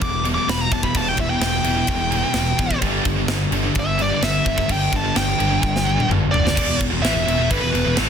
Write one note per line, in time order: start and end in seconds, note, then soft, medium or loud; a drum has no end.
0.00 0.36 E1 loud
0.00 0.22 E2 medium
0.00 0.23 B2 medium
0.00 0.93 E3 medium
0.00 0.95 G3 medium
0.00 0.96 B3 medium
0.00 0.93 E4 medium
0.00 0.24 D6 loud
0.00 kick loud
0.00 crash medium
0.25 0.37 E2 medium
0.25 0.36 B2 medium
0.25 crash medium
0.35 0.47 E2 medium
0.35 0.48 B2 medium
0.35 0.49 D6 loud
0.48 0.65 E1 medium
0.48 0.69 E2 medium
0.48 0.70 B2 medium
0.48 0.61 B5 medium
0.48 snare loud
0.48 crash medium
0.61 0.72 A#5 loud
0.72 0.89 E1 medium
0.72 0.83 E2 medium
0.72 0.83 B2 medium
0.72 0.84 A5 medium
0.72 kick medium
0.72 crash medium
0.83 0.94 E2 medium
0.83 0.95 B2 medium
0.83 0.97 B5 medium
0.83 kick medium
0.94 1.12 E1 loud
0.94 1.16 E2 medium
0.94 1.16 B2 medium
0.94 1.63 E3 medium
0.94 1.67 G3 medium
0.94 1.66 B3 medium
0.94 1.63 E4 loud
0.94 1.08 A5 loud
0.94 kick loud
0.94 crash medium
1.08 1.19 G5 medium
1.17 1.35 E1 medium
1.17 1.28 E2 medium
1.17 1.28 B2 medium
1.17 1.30 E5 medium
1.17 kick medium
1.17 crash medium
1.29 1.40 E2 medium
1.29 1.40 B2 medium
1.29 1.41 G5 medium
1.40 1.58 E1 medium
1.40 1.63 E2 medium
1.40 1.62 B2 medium
1.40 2.79 G5 loud
1.40 snare loud
1.40 crash medium
1.64 1.82 E1 medium
1.64 1.74 E2 medium
1.64 1.74 B2 medium
1.64 2.83 G3 medium
1.64 2.84 B3 medium
1.64 2.80 E4 medium
1.64 crash medium
1.69 2.82 E3 medium
1.75 1.87 E2 medium
1.75 1.88 B2 medium
1.87 2.23 E1 loud
1.87 2.09 E2 medium
1.87 2.10 B2 medium
1.87 kick loud
1.87 crash medium
2.11 2.22 E2 medium
2.11 2.22 B2 loud
2.11 crash medium
2.23 2.33 E2 medium
2.23 2.33 B2 medium
2.34 2.52 E1 loud
2.34 2.56 E2 medium
2.34 2.56 B2 medium
2.34 snare loud
2.34 crash medium
2.58 2.76 A1 medium
2.58 2.70 E2 medium
2.58 2.70 B2 medium
2.58 kick medium
2.58 crash medium
2.71 2.81 E2 medium
2.71 2.81 B2 medium
2.71 kick medium
2.81 2.99 G1 loud
2.81 3.04 G2 medium
2.81 3.55 G2 loud
2.81 3.04 D3 medium
2.81 3.51 D3 loud
2.81 3.04 G3 loud
2.81 3.54 G3 loud
2.81 3.53 B3 loud
2.81 3.51 D4 medium
2.81 kick loud
2.81 crash medium
3.05 3.23 G1 medium
3.05 3.16 G2 medium
3.05 3.15 D3 medium
3.05 kick medium
3.05 crash medium
3.17 3.28 G2 medium
3.17 3.28 D3 medium
3.27 3.45 G1 medium
3.27 3.50 G2 medium
3.27 3.50 D3 loud
3.27 snare loud
3.27 crash medium
3.51 3.69 G1 medium
3.51 3.63 G2 medium
3.51 3.62 D3 medium
3.51 4.68 D3 medium
3.51 4.70 G3 medium
3.51 4.70 B3 medium
3.51 4.67 D4 medium
3.51 crash medium
3.56 4.67 G2 medium
3.63 3.75 G2 medium
3.63 3.75 D3 medium
3.75 4.10 G1 loud
3.75 3.97 G2 medium
3.75 3.97 D3 medium
3.75 kick medium
3.75 crash medium
3.80 4.00 E5 loud
3.98 4.09 G2 medium
3.98 4.08 D3 loud
3.98 4.23 D5 loud
3.98 crash medium
4.10 4.20 G2 medium
4.10 4.20 D3 medium
4.21 4.39 G1 loud
4.21 4.43 G2 medium
4.21 4.43 D3 medium
4.21 4.68 E5 medium
4.21 snare loud
4.21 crash medium
4.45 4.63 G1 medium
4.45 4.55 G2 medium
4.45 4.55 D3 medium
4.45 kick medium
4.45 crash medium
4.56 4.67 G2 medium
4.56 4.68 D3 medium
4.56 kick medium
4.68 4.86 G1 medium
4.68 5.37 G2 medium
4.68 4.90 G2 medium
4.68 4.90 D3 medium
4.68 5.38 D3 medium
4.68 5.38 G3 medium
4.68 5.39 B3 loud
4.68 5.37 D4 loud
4.68 4.93 G5 loud
4.68 kick medium
4.68 crash medium
4.92 5.10 G1 medium
4.92 5.03 G2 medium
4.92 5.03 D3 medium
4.92 kick loud
4.92 crash medium
4.96 5.17 A5 loud
5.04 5.14 G2 medium
5.04 5.14 D3 medium
5.15 5.33 G1 medium
5.15 5.37 G2 medium
5.15 5.37 D3 medium
5.15 6.07 G5 loud
5.15 snare loud
5.15 crash medium
5.39 5.57 G1 medium
5.39 5.50 G2 medium
5.39 5.49 D3 medium
5.39 6.56 D3 medium
5.39 6.56 G3 medium
5.39 6.55 B3 loud
5.39 6.54 D4 medium
5.39 crash medium
5.43 6.57 G2 medium
5.50 5.61 G2 medium
5.50 5.61 D3 medium
5.62 5.97 G1 loud
5.62 5.83 G2 medium
5.62 5.84 D3 medium
5.62 kick loud
5.76 snare medium
5.85 5.96 G2 medium
5.85 5.95 D3 loud
5.96 6.07 G2 medium
5.96 6.07 D3 medium
5.96 mid tom medium
6.08 6.26 G1 loud
6.08 6.30 G2 medium
6.08 6.30 D3 medium
6.08 mid tom medium
6.31 6.50 F1 medium
6.31 6.43 G2 medium
6.31 6.43 D3 medium
6.31 6.76 D5 loud
6.31 floor tom loud
6.44 6.55 G2 medium
6.44 6.55 D3 medium
6.44 snare medium
6.55 6.67 E1 loud
6.55 6.66 E2 medium
6.55 6.66 B2 loud
6.55 kick loud
6.55 crash loud
6.55 crash medium
6.67 6.79 E1 medium
6.67 6.77 E2 medium
6.67 6.77 B2 medium
6.79 6.90 E1 medium
6.79 6.89 E2 medium
6.79 6.90 B2 medium
6.79 kick medium
6.79 crash medium
6.90 7.02 E1 medium
6.90 7.02 E2 medium
6.90 7.01 B2 medium
7.02 7.13 A1 loud
7.02 7.13 A2 medium
7.02 7.14 E3 loud
7.02 7.51 E5 loud
7.02 snare loud
7.02 crash medium
7.14 7.25 E1 medium
7.14 7.24 E2 medium
7.14 7.24 B2 medium
7.25 7.37 E1 medium
7.25 7.37 E2 medium
7.25 7.38 B2 medium
7.25 crash medium
7.38 7.49 E1 medium
7.38 7.49 E2 medium
7.38 7.50 B2 medium
7.50 7.61 G1 loud
7.50 7.61 G2 loud
7.50 7.61 D3 loud
7.50 7.94 B4 medium
7.50 kick loud
7.50 crash medium
7.61 7.72 E1 medium
7.61 7.71 E2 medium
7.61 7.72 B2 medium
7.72 7.84 E1 medium
7.72 7.84 E2 medium
7.72 7.83 B2 medium
7.72 crash medium
7.85 7.96 E1 medium
7.85 7.97 E2 medium
7.85 7.95 B2 medium
7.96 8.08 A1 loud
7.96 8.07 A2 loud
7.96 8.07 E3 loud
7.96 snare loud
7.96 crash medium